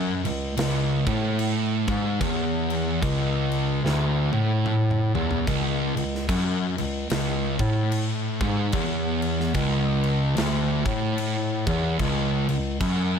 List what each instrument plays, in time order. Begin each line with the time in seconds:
Already playing: bass clarinet F#2, distorted electric guitar F#2
0.25 bass clarinet C#2, distorted electric guitar C#2, crash
0.57 bass clarinet C#2, distorted electric guitar C#2, snare, crash
1.06 distorted electric guitar A2, bass clarinet A2, kick, crash
1.39 crash
1.88 bass clarinet G#2, distorted electric guitar G#2, kick, crash
2.21 distorted electric guitar E2, bass clarinet E2, kick, crash
2.70 crash
3.02 distorted electric guitar C#2, bass clarinet C#2, kick, crash
3.52 crash
3.83 bass clarinet D2, distorted electric guitar D2, snare
4.32 bass clarinet A2, distorted electric guitar A2, high tom
4.66 mid tom
4.91 mid tom
5.14 bass clarinet E2, distorted electric guitar E2, floor tom
5.31 floor tom
5.47 distorted electric guitar C#2, bass clarinet C#2, kick, crash
5.95 bass clarinet C#2, distorted electric guitar C#2, crash
6.15 snare
6.28 distorted electric guitar F#2, bass clarinet F#2, kick, crash
6.77 bass clarinet C#2, distorted electric guitar C#2, crash
7.09 bass clarinet C#2, distorted electric guitar C#2, snare, crash
7.59 bass clarinet A2, distorted electric guitar A2, kick, crash
7.92 crash
8.41 bass clarinet G#2, distorted electric guitar G#2, kick, crash
8.72 bass clarinet E2, distorted electric guitar E2, kick, crash
9.22 crash
9.40 snare
9.54 distorted electric guitar C#2, bass clarinet C#2, kick, crash
10.04 crash
10.36 distorted electric guitar D2, bass clarinet D2, snare, crash
10.85 distorted electric guitar A2, bass clarinet A2, kick, crash
11.18 crash
11.67 distorted electric guitar E2, bass clarinet E2, kick, crash
11.99 bass clarinet C#2, distorted electric guitar C#2, kick, crash
12.48 bass clarinet C#2, distorted electric guitar C#2, crash
12.80 bass clarinet F#2, distorted electric guitar F#2, kick, crash